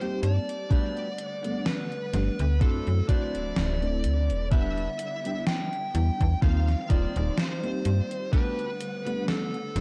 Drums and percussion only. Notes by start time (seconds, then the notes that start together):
0.01 closed hi-hat
0.23 closed hi-hat
0.49 closed hi-hat
0.71 kick, closed hi-hat
0.97 closed hi-hat
1.18 closed hi-hat
1.44 closed hi-hat
1.66 snare, closed hi-hat
1.92 closed hi-hat
2.14 snare, closed hi-hat
2.39 closed hi-hat
2.61 kick, closed hi-hat
2.87 closed hi-hat
3.09 kick, closed hi-hat
3.35 closed hi-hat
3.56 snare, closed hi-hat
3.82 closed hi-hat
4.04 closed hi-hat
4.30 closed hi-hat
4.52 kick, closed hi-hat
4.78 closed hi-hat
4.99 closed hi-hat
5.25 closed hi-hat
5.47 snare, closed hi-hat
5.73 closed hi-hat
5.95 closed hi-hat
6.21 kick, closed hi-hat
6.42 kick, closed hi-hat
6.68 snare, closed hi-hat
6.90 kick, closed hi-hat
7.16 closed hi-hat
7.38 snare, closed hi-hat
7.63 closed hi-hat
7.85 closed hi-hat
8.11 closed hi-hat
8.33 kick, closed hi-hat
8.59 closed hi-hat
8.81 closed hi-hat
9.07 closed hi-hat
9.28 snare, closed hi-hat
9.54 closed hi-hat
9.76 snare, closed hi-hat